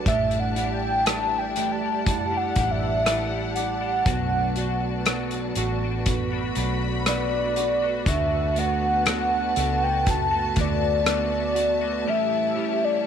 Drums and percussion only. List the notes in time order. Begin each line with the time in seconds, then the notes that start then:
0.06 kick, closed hi-hat
0.31 closed hi-hat
0.56 closed hi-hat
1.06 cross-stick, closed hi-hat
1.56 closed hi-hat
2.06 kick, closed hi-hat
2.56 kick, closed hi-hat
3.06 cross-stick, closed hi-hat
3.56 closed hi-hat
4.06 kick, closed hi-hat
4.56 closed hi-hat
5.06 cross-stick, closed hi-hat
5.31 closed hi-hat
5.55 closed hi-hat
6.06 kick, closed hi-hat
6.55 closed hi-hat
7.06 cross-stick, closed hi-hat
7.56 closed hi-hat
8.06 kick, closed hi-hat
8.56 closed hi-hat
9.06 cross-stick, closed hi-hat
9.56 closed hi-hat
10.07 kick, closed hi-hat
10.56 kick, closed hi-hat
11.06 cross-stick, closed hi-hat
11.56 closed hi-hat